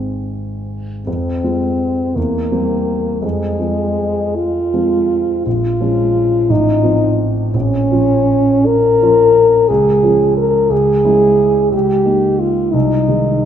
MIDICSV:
0, 0, Header, 1, 3, 480
1, 0, Start_track
1, 0, Tempo, 794702
1, 649, Time_signature, 6, 3, 24, 8
1, 649, Tempo, 720288
1, 2089, Tempo, 758534
1, 3049, Tempo, 697674
1, 4969, Tempo, 736196
1, 5929, Tempo, 677966
1, 9069, End_track
2, 0, Start_track
2, 0, Title_t, "French horn"
2, 0, Program_c, 0, 60
2, 0, Note_on_c, 0, 60, 38
2, 269, Note_off_c, 0, 60, 0
2, 643, Note_on_c, 0, 60, 59
2, 1372, Note_on_c, 0, 58, 63
2, 1382, Note_off_c, 0, 60, 0
2, 2071, Note_off_c, 0, 58, 0
2, 2075, Note_on_c, 0, 56, 62
2, 2799, Note_on_c, 0, 65, 67
2, 2809, Note_off_c, 0, 56, 0
2, 3528, Note_off_c, 0, 65, 0
2, 3539, Note_on_c, 0, 65, 73
2, 4252, Note_on_c, 0, 63, 74
2, 4263, Note_off_c, 0, 65, 0
2, 4788, Note_off_c, 0, 63, 0
2, 4965, Note_on_c, 0, 61, 80
2, 5696, Note_on_c, 0, 70, 89
2, 5706, Note_off_c, 0, 61, 0
2, 6402, Note_on_c, 0, 68, 75
2, 6412, Note_off_c, 0, 70, 0
2, 6885, Note_off_c, 0, 68, 0
2, 6889, Note_on_c, 0, 70, 76
2, 7137, Note_on_c, 0, 68, 83
2, 7148, Note_off_c, 0, 70, 0
2, 7841, Note_off_c, 0, 68, 0
2, 7845, Note_on_c, 0, 67, 73
2, 8324, Note_on_c, 0, 65, 68
2, 8335, Note_off_c, 0, 67, 0
2, 8562, Note_on_c, 0, 63, 73
2, 8572, Note_off_c, 0, 65, 0
2, 9069, Note_off_c, 0, 63, 0
2, 9069, End_track
3, 0, Start_track
3, 0, Title_t, "Grand piano"
3, 0, Program_c, 1, 0
3, 0, Control_c, 1, 64, 127
3, 0, Note_on_c, 1, 32, 35
3, 0, Note_on_c, 1, 56, 26
3, 0, Note_on_c, 1, 60, 27
3, 0, Note_on_c, 1, 63, 26
3, 0, Note_on_c, 1, 68, 35
3, 0, Note_on_c, 1, 80, 46
3, 608, Note_off_c, 1, 32, 0
3, 613, Note_off_c, 1, 56, 0
3, 616, Note_off_c, 1, 60, 0
3, 619, Note_off_c, 1, 63, 0
3, 645, Note_on_c, 1, 41, 43
3, 660, Control_c, 1, 64, 0
3, 665, Note_off_c, 1, 68, 0
3, 665, Note_off_c, 1, 80, 0
3, 784, Control_c, 1, 64, 127
3, 883, Note_off_c, 1, 41, 0
3, 889, Note_on_c, 1, 60, 34
3, 891, Note_on_c, 1, 56, 32
3, 894, Note_on_c, 1, 65, 38
3, 1350, Note_off_c, 1, 60, 0
3, 1351, Note_off_c, 1, 56, 0
3, 1352, Note_off_c, 1, 65, 0
3, 1370, Note_on_c, 1, 40, 45
3, 1389, Control_c, 1, 64, 0
3, 1507, Control_c, 1, 64, 127
3, 1605, Note_off_c, 1, 40, 0
3, 1610, Note_on_c, 1, 60, 38
3, 1611, Note_on_c, 1, 55, 35
3, 2059, Note_off_c, 1, 55, 0
3, 2059, Note_off_c, 1, 60, 0
3, 2080, Note_on_c, 1, 41, 46
3, 2101, Control_c, 1, 64, 0
3, 2198, Control_c, 1, 64, 127
3, 2311, Note_off_c, 1, 41, 0
3, 2312, Note_on_c, 1, 53, 37
3, 2316, Note_on_c, 1, 56, 37
3, 2319, Note_on_c, 1, 60, 38
3, 3018, Note_off_c, 1, 53, 0
3, 3020, Note_off_c, 1, 56, 0
3, 3021, Note_off_c, 1, 60, 0
3, 3039, Note_on_c, 1, 53, 39
3, 3040, Note_on_c, 1, 56, 36
3, 3045, Note_on_c, 1, 60, 43
3, 3503, Note_off_c, 1, 53, 0
3, 3503, Note_off_c, 1, 56, 0
3, 3506, Note_off_c, 1, 60, 0
3, 3537, Note_on_c, 1, 34, 47
3, 3546, Control_c, 1, 64, 0
3, 3649, Control_c, 1, 64, 127
3, 3768, Note_off_c, 1, 34, 0
3, 3774, Note_on_c, 1, 53, 40
3, 3778, Note_on_c, 1, 56, 37
3, 3780, Note_on_c, 1, 61, 42
3, 4223, Note_off_c, 1, 53, 0
3, 4226, Note_off_c, 1, 56, 0
3, 4226, Note_off_c, 1, 61, 0
3, 4249, Note_on_c, 1, 33, 55
3, 4262, Control_c, 1, 64, 0
3, 4366, Control_c, 1, 64, 127
3, 4478, Note_on_c, 1, 53, 40
3, 4482, Note_off_c, 1, 33, 0
3, 4483, Note_on_c, 1, 60, 39
3, 4486, Note_on_c, 1, 65, 41
3, 4936, Note_off_c, 1, 53, 0
3, 4939, Note_off_c, 1, 60, 0
3, 4940, Note_off_c, 1, 65, 0
3, 4967, Note_on_c, 1, 34, 53
3, 4981, Control_c, 1, 64, 0
3, 5084, Control_c, 1, 64, 127
3, 5199, Note_off_c, 1, 34, 0
3, 5209, Note_on_c, 1, 53, 39
3, 5215, Note_on_c, 1, 65, 42
3, 5216, Note_on_c, 1, 61, 37
3, 5904, Note_off_c, 1, 53, 0
3, 5908, Note_off_c, 1, 61, 0
3, 5908, Note_off_c, 1, 65, 0
3, 5931, Note_on_c, 1, 53, 44
3, 5939, Note_on_c, 1, 65, 46
3, 5941, Note_on_c, 1, 61, 40
3, 6378, Note_off_c, 1, 53, 0
3, 6382, Note_off_c, 1, 65, 0
3, 6383, Note_off_c, 1, 61, 0
3, 6415, Note_on_c, 1, 37, 57
3, 6418, Control_c, 1, 64, 0
3, 6533, Control_c, 1, 64, 127
3, 6647, Note_off_c, 1, 37, 0
3, 6648, Note_on_c, 1, 53, 43
3, 6654, Note_on_c, 1, 61, 39
3, 6659, Note_on_c, 1, 65, 41
3, 7103, Note_off_c, 1, 53, 0
3, 7106, Note_off_c, 1, 61, 0
3, 7109, Note_off_c, 1, 65, 0
3, 7120, Note_on_c, 1, 37, 57
3, 7144, Control_c, 1, 64, 0
3, 7267, Control_c, 1, 64, 127
3, 7358, Note_off_c, 1, 37, 0
3, 7368, Note_on_c, 1, 61, 40
3, 7369, Note_on_c, 1, 56, 42
3, 7371, Note_on_c, 1, 64, 46
3, 7823, Note_off_c, 1, 61, 0
3, 7824, Note_off_c, 1, 56, 0
3, 7825, Note_off_c, 1, 64, 0
3, 7842, Note_on_c, 1, 37, 51
3, 7867, Control_c, 1, 64, 0
3, 7958, Control_c, 1, 64, 127
3, 8078, Note_on_c, 1, 58, 37
3, 8079, Note_off_c, 1, 37, 0
3, 8082, Note_on_c, 1, 63, 41
3, 8534, Note_off_c, 1, 58, 0
3, 8536, Note_off_c, 1, 63, 0
3, 8563, Note_on_c, 1, 36, 54
3, 8583, Control_c, 1, 64, 0
3, 8676, Control_c, 1, 64, 127
3, 8799, Note_off_c, 1, 36, 0
3, 8808, Note_on_c, 1, 51, 39
3, 8808, Note_on_c, 1, 56, 39
3, 8812, Note_on_c, 1, 63, 44
3, 9069, Note_off_c, 1, 51, 0
3, 9069, Note_off_c, 1, 56, 0
3, 9069, Note_off_c, 1, 63, 0
3, 9069, End_track
0, 0, End_of_file